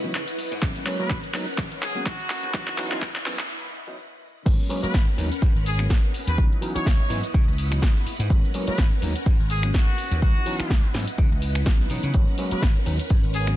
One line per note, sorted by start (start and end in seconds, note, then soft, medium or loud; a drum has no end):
0.00 0.10 C#2 medium
0.00 0.12 E3 medium
0.00 0.12 F#3 medium
0.00 0.12 B3 medium
0.00 0.12 C#4 medium
0.00 0.60 E4 medium
0.00 2.50 B4 medium
0.00 0.60 D#5 medium
0.00 0.59 F#5 medium
0.04 0.12 D#4 medium
0.14 0.24 C#3 medium
0.14 clap medium
0.14 closed hi-hat medium
0.28 closed hi-hat medium
0.38 muted slap bass stroke soft
0.38 open hi-hat loud
0.51 0.60 G#2 loud
0.51 closed hi-hat soft
0.62 0.83 F#3 medium
0.62 0.83 G#3 medium
0.62 0.84 A#3 medium
0.62 0.84 B3 medium
0.62 2.52 C#4 medium
0.62 0.84 C#4 medium
0.62 2.52 A#4 medium
0.62 3.47 F#5 medium
0.62 kick loud
0.62 clap medium
0.62 closed hi-hat medium
0.76 closed hi-hat medium
0.86 0.97 F#3 medium
0.86 0.97 G#3 medium
0.86 0.97 A#3 medium
0.86 0.97 B3 medium
0.86 0.97 C#4 medium
0.86 clap medium
0.86 open hi-hat loud
0.99 1.13 F#3 medium
0.99 1.14 G#3 medium
0.99 1.14 A#3 medium
0.99 1.14 B3 medium
0.99 1.14 C#4 medium
0.99 1.17 B4 medium
1.10 kick loud
1.10 clap medium
1.10 closed hi-hat medium
1.23 closed hi-hat soft
1.34 1.44 D#2 medium
1.34 1.44 F#3 medium
1.34 1.45 G#3 medium
1.34 1.45 A#3 medium
1.34 1.45 B3 medium
1.34 1.45 D#4 loud
1.34 clap medium
1.34 open hi-hat loud
1.58 1.68 G#2 medium
1.58 kick loud
1.58 clap medium
1.58 closed hi-hat medium
1.71 2.02 G#1 medium
1.71 closed hi-hat soft
1.82 2.01 G#4 loud
1.82 clap medium
1.82 open hi-hat loud
1.95 2.04 F#3 medium
1.95 2.04 G#3 medium
1.95 2.04 A#3 medium
1.95 2.04 B3 medium
1.95 2.04 C#4 medium
2.06 2.16 G#2 medium
2.06 2.52 F#4 loud
2.06 kick loud
2.06 clap medium
2.06 closed hi-hat medium
2.19 closed hi-hat medium
2.30 clap medium
2.30 open hi-hat loud
2.43 2.52 D#2 loud
2.43 closed hi-hat soft
2.54 2.75 E3 medium
2.54 2.76 F#3 medium
2.54 2.76 B3 medium
2.54 2.76 C#4 medium
2.54 2.76 D#4 medium
2.54 3.49 E4 medium
2.54 3.22 F#4 medium
2.54 3.49 B4 medium
2.54 3.49 D#5 medium
2.54 kick loud
2.54 clap medium
2.54 closed hi-hat medium
2.67 clap medium
2.67 closed hi-hat medium
2.77 2.88 E3 medium
2.77 2.88 F#3 medium
2.77 2.89 B3 medium
2.77 2.89 C#4 medium
2.77 2.89 D#4 medium
2.77 clap medium
2.77 open hi-hat loud
2.91 3.05 E3 medium
2.91 3.06 F#3 medium
2.91 3.06 B3 medium
2.91 3.06 C#4 medium
2.91 3.06 D#4 medium
2.91 clap medium
3.02 3.12 C#2 loud
3.02 kick loud
3.02 clap loud
3.02 closed hi-hat medium
3.15 clap medium
3.15 closed hi-hat soft
3.26 3.36 G#2 medium
3.26 3.37 E3 medium
3.26 3.37 F#3 medium
3.26 3.37 B3 medium
3.26 3.37 C#4 medium
3.26 3.37 E4 loud
3.26 clap loud
3.26 open hi-hat loud
3.39 clap medium
3.87 3.96 E3 medium
3.87 3.96 F#3 medium
3.87 3.96 B3 medium
3.87 3.96 C#4 medium
3.87 3.96 D#4 medium
4.45 4.56 G#1 loud
4.45 4.67 F#3 medium
4.45 4.67 G#3 medium
4.45 4.67 A#3 medium
4.45 4.68 B3 medium
4.45 6.36 C#4 medium
4.45 4.68 C#4 medium
4.45 6.36 A#4 medium
4.45 6.36 B4 medium
4.45 6.36 F#5 medium
4.45 kick loud
4.45 closed hi-hat medium
4.45 crash loud
4.45 shaker medium
4.60 shaker soft
4.69 4.80 F#3 medium
4.69 4.80 G#3 medium
4.69 4.80 A#3 medium
4.69 4.81 B3 medium
4.69 4.81 C#4 medium
4.69 open hi-hat loud
4.83 4.97 F#3 medium
4.83 4.97 G#3 medium
4.83 4.97 A#3 medium
4.83 4.98 B3 medium
4.83 4.98 C#4 medium
4.83 5.01 B4 medium
4.83 muted slap bass stroke soft
4.83 closed hi-hat medium
4.83 shaker medium
4.94 5.04 G#1 loud
4.94 kick loud
4.94 snare loud
4.94 closed hi-hat medium
4.94 shaker medium
5.08 shaker soft
5.17 5.28 D#2 medium
5.17 5.28 F#3 medium
5.17 5.28 G#3 medium
5.17 5.28 A#3 medium
5.17 5.28 B3 medium
5.17 5.29 D#4 loud
5.17 open hi-hat medium
5.32 closed hi-hat medium
5.32 shaker medium
5.42 5.52 G#2 medium
5.42 kick loud
5.42 closed hi-hat medium
5.42 shaker medium
5.55 5.86 G#1 medium
5.55 shaker soft
5.66 5.85 G#4 loud
5.66 open hi-hat loud
5.79 5.88 F#3 medium
5.79 5.88 G#3 medium
5.79 5.88 A#3 medium
5.79 5.88 B3 medium
5.79 5.88 C#4 medium
5.79 finger snap medium
5.79 closed hi-hat medium
5.79 shaker medium
5.90 6.00 G#2 medium
5.90 kick loud
5.90 snare loud
5.90 closed hi-hat medium
5.90 shaker medium
6.04 shaker soft
6.14 open hi-hat loud
6.27 6.36 D#2 loud
6.27 6.44 B4 medium
6.27 closed hi-hat medium
6.27 shaker medium
6.38 6.49 C#2 loud
6.38 6.59 E3 medium
6.38 6.60 F#3 medium
6.38 6.60 B3 medium
6.38 6.60 C#4 medium
6.38 6.60 D#4 medium
6.38 8.28 E4 medium
6.38 13.56 B4 medium
6.38 8.28 D#5 medium
6.38 13.56 F#5 medium
6.38 kick loud
6.38 closed hi-hat medium
6.38 shaker medium
6.52 shaker soft
6.61 6.72 E3 medium
6.61 6.72 F#3 medium
6.61 6.73 B3 medium
6.61 6.73 C#4 medium
6.61 6.73 D#4 medium
6.61 open hi-hat loud
6.75 6.89 E3 medium
6.75 6.90 F#3 medium
6.75 6.90 B3 medium
6.75 6.90 C#4 medium
6.75 6.90 D#4 medium
6.75 7.24 C#5 loud
6.75 muted slap bass stroke soft
6.75 closed hi-hat medium
6.75 shaker medium
6.86 6.96 C#2 loud
6.86 kick loud
6.86 snare loud
6.86 closed hi-hat medium
6.86 shaker medium
7.00 shaker soft
7.09 7.20 G#2 medium
7.09 7.20 E3 medium
7.09 7.21 F#3 medium
7.09 7.20 B3 medium
7.09 7.21 C#4 medium
7.09 7.21 E4 loud
7.09 open hi-hat loud
7.23 closed hi-hat medium
7.23 shaker medium
7.34 7.45 C#3 medium
7.34 kick loud
7.34 closed hi-hat medium
7.34 shaker medium
7.47 7.78 C#2 medium
7.47 shaker soft
7.58 open hi-hat loud
7.71 7.80 E3 medium
7.71 7.80 F#3 medium
7.71 7.80 B3 medium
7.71 7.80 C#4 medium
7.71 7.80 D#4 medium
7.71 finger snap medium
7.71 closed hi-hat medium
7.71 shaker medium
7.82 7.93 C#3 medium
7.82 kick loud
7.82 snare loud
7.82 closed hi-hat medium
7.82 shaker medium
7.96 shaker soft
8.06 muted slap bass stroke soft
8.06 open hi-hat loud
8.19 8.28 G#2 medium
8.19 closed hi-hat medium
8.19 shaker medium
8.29 8.40 G#1 loud
8.29 8.51 F#3 medium
8.29 8.51 G#3 medium
8.29 8.52 A#3 medium
8.29 8.52 B3 medium
8.29 8.52 C#4 medium
8.29 10.20 C#4 medium
8.29 10.21 A#4 medium
8.29 kick loud
8.29 closed hi-hat medium
8.29 shaker medium
8.44 shaker soft
8.54 8.65 F#3 medium
8.54 8.65 G#3 medium
8.54 8.65 A#3 medium
8.54 8.65 B3 medium
8.54 8.65 C#4 medium
8.54 open hi-hat loud
8.67 8.82 F#3 medium
8.67 8.82 G#3 medium
8.67 8.82 A#3 medium
8.67 8.82 B3 medium
8.67 8.82 C#4 medium
8.67 8.85 B4 medium
8.67 muted slap bass stroke soft
8.67 closed hi-hat medium
8.67 shaker medium
8.78 8.88 G#1 loud
8.78 kick loud
8.78 snare loud
8.78 closed hi-hat medium
8.78 shaker medium
8.92 shaker soft
9.02 9.12 D#2 medium
9.02 9.13 F#3 medium
9.02 9.13 G#3 medium
9.02 9.13 A#3 medium
9.02 9.13 B3 medium
9.02 9.13 D#4 loud
9.02 open hi-hat loud
9.15 closed hi-hat medium
9.15 shaker medium
9.26 9.37 G#2 medium
9.26 kick loud
9.26 closed hi-hat medium
9.26 shaker medium
9.39 9.70 G#1 medium
9.39 shaker soft
9.50 9.69 G#4 loud
9.50 open hi-hat loud
9.63 9.72 F#3 medium
9.63 9.72 G#3 medium
9.63 9.72 A#3 medium
9.63 9.72 B3 medium
9.63 9.72 C#4 medium
9.63 finger snap medium
9.63 closed hi-hat medium
9.63 shaker medium
9.74 9.85 G#2 medium
9.74 10.20 F#4 loud
9.74 kick loud
9.74 snare loud
9.74 closed hi-hat medium
9.74 shaker medium
9.88 shaker soft
9.98 open hi-hat loud
10.11 10.20 D#2 loud
10.11 closed hi-hat medium
10.11 shaker medium
10.22 10.32 C#2 loud
10.22 10.44 E3 medium
10.22 10.44 F#3 medium
10.22 10.44 B3 medium
10.22 10.44 C#4 medium
10.22 10.44 D#4 medium
10.22 12.12 E4 medium
10.22 10.90 F#4 medium
10.22 12.12 D#5 medium
10.22 kick loud
10.22 closed hi-hat medium
10.22 shaker medium
10.36 shaker soft
10.46 10.57 E3 medium
10.46 10.57 F#3 medium
10.46 10.57 B3 medium
10.46 10.57 C#4 medium
10.46 10.57 D#4 medium
10.46 open hi-hat loud
10.59 10.73 E3 medium
10.59 10.74 F#3 medium
10.59 10.74 B3 medium
10.59 10.74 C#4 medium
10.59 10.74 D#4 medium
10.59 finger snap medium
10.59 muted slap bass stroke soft
10.59 closed hi-hat medium
10.59 shaker medium
10.70 10.81 C#2 loud
10.70 kick loud
10.70 snare loud
10.70 closed hi-hat medium
10.70 shaker medium
10.84 shaker soft
10.94 11.05 G#2 medium
10.94 11.04 E3 medium
10.94 11.05 F#3 medium
10.94 11.05 B3 medium
10.94 11.05 C#4 medium
10.94 11.05 E4 loud
10.94 snare medium
10.94 open hi-hat loud
11.08 closed hi-hat medium
11.08 shaker medium
11.18 11.28 C#3 medium
11.18 kick loud
11.18 closed hi-hat medium
11.18 shaker medium
11.31 11.62 C#2 medium
11.31 shaker soft
11.42 open hi-hat loud
11.55 finger snap medium
11.55 closed hi-hat medium
11.55 shaker medium
11.66 kick loud
11.66 snare loud
11.66 closed hi-hat soft
11.66 shaker medium
11.80 shaker soft
11.90 12.00 B2 loud
11.90 12.12 E3 medium
11.90 12.12 F#3 medium
11.90 12.12 B3 medium
11.90 12.12 C#4 medium
11.90 12.12 D#4 medium
11.90 open hi-hat medium
12.03 12.12 C#3 medium
12.03 closed hi-hat medium
12.03 shaker medium
12.14 12.24 G#1 loud
12.14 12.36 F#3 medium
12.14 12.36 G#3 medium
12.14 12.36 A#3 medium
12.14 12.36 B3 medium
12.14 13.56 C#4 medium
12.14 12.36 C#4 medium
12.14 13.56 A#4 medium
12.14 kick loud
12.14 closed hi-hat medium
12.14 shaker medium
12.28 shaker soft
12.38 12.49 F#3 medium
12.38 12.49 G#3 medium
12.38 12.49 A#3 medium
12.38 12.49 B3 medium
12.38 12.49 C#4 medium
12.38 open hi-hat loud
12.51 12.66 F#3 medium
12.51 12.66 G#3 medium
12.51 12.66 A#3 medium
12.51 12.66 B3 medium
12.51 12.66 C#4 medium
12.51 12.69 B4 medium
12.51 muted slap bass stroke soft
12.51 closed hi-hat medium
12.51 shaker medium
12.62 12.73 G#1 loud
12.62 kick loud
12.62 snare loud
12.62 closed hi-hat medium
12.62 shaker medium
12.76 shaker soft
12.86 12.97 D#2 medium
12.86 12.96 F#3 medium
12.86 12.97 G#3 medium
12.86 12.97 A#3 medium
12.86 12.97 B3 medium
12.86 12.97 D#4 loud
12.86 open hi-hat medium
12.99 closed hi-hat medium
12.99 shaker medium
13.10 13.21 G#2 medium
13.10 kick loud
13.10 closed hi-hat medium
13.10 shaker medium
13.23 13.54 G#1 medium
13.23 shaker soft
13.34 13.53 G#4 loud
13.34 open hi-hat loud
13.47 13.56 F#3 medium
13.47 13.56 G#3 medium
13.47 13.56 A#3 medium
13.47 13.56 B3 medium
13.47 13.56 C#4 medium
13.47 finger snap medium
13.47 closed hi-hat medium
13.47 shaker medium